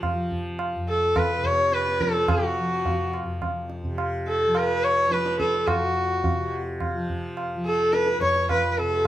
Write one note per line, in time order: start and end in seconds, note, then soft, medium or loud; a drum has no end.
0.00 0.75 F2 medium
0.00 1.38 C3 medium
0.00 0.13 F3 medium
0.00 tabla na medium
0.00 tabla ge medium
0.13 1.99 F3 medium
0.31 tabla ge soft
0.59 tabla na medium
0.75 3.22 F2 soft
0.89 1.19 A4 medium
1.02 1.31 A4 medium
1.16 1.47 B4 medium
1.16 tabla na medium
1.16 tabla ge medium
1.29 1.59 B4 medium
1.38 3.84 C3 medium
1.44 1.75 C#5 medium
1.44 tabla ge soft
1.58 1.87 C#5 medium
1.72 2.03 B4 medium
1.72 tabla te medium
1.86 2.16 B4 medium
1.86 tabla te medium
1.99 2.59 F3 medium
1.99 2.31 A4 medium
1.99 tabla ke medium
2.14 2.35 A4 medium
2.14 tabla te soft
2.28 3.14 F#4 medium
2.28 tabla na medium
2.28 tabla ge medium
2.36 2.43 A4 soft
2.44 3.24 F#4 medium
2.59 4.46 F3 soft
2.86 tabla tin medium
2.86 tabla ge medium
3.14 tabla na medium
3.23 5.68 F2 medium
3.42 tabla na medium
3.42 tabla ge medium
3.70 tabla te medium
3.84 6.32 C3 medium
3.84 tabla ge soft
3.98 tabla na medium
4.28 4.59 A4 medium
4.40 4.70 A4 medium
4.46 5.07 F3 medium
4.55 4.85 B4 medium
4.55 tabla na medium
4.70 5.26 B4 medium
4.84 5.13 C#5 medium
5.07 6.95 F3 medium
5.11 5.39 B4 medium
5.11 tabla te medium
5.26 5.55 B4 medium
5.26 tabla te medium
5.40 5.69 A4 medium
5.40 tabla ke soft
5.54 5.74 A4 medium
5.54 tabla te medium
5.68 8.18 F2 medium
5.68 6.52 F#4 medium
5.68 tabla na medium
5.68 tabla ge medium
5.76 5.82 A4 soft
5.83 6.63 F#4 soft
6.24 tabla tin medium
6.24 tabla ge medium
6.32 8.80 C3 medium
6.80 tabla na medium
6.80 tabla ge medium
6.95 7.56 F3 medium
7.09 tabla ge soft
7.37 tabla na medium
7.56 9.07 F3 medium
7.66 7.95 A4 medium
7.79 8.08 A4 medium
7.93 8.21 B4 medium
7.93 tabla te medium
8.06 8.62 B4 medium
8.06 tabla te medium
8.18 9.07 F2 medium
8.18 tabla ke medium
8.22 8.48 C#5 loud
8.36 tabla te medium
8.49 8.72 B4 medium
8.49 tabla na medium
8.49 tabla ge medium
8.63 8.92 B4 medium
8.72 8.80 B4 medium
8.78 9.07 C3 medium
8.78 9.07 A4 medium
8.78 tabla te medium
8.92 9.07 A4 medium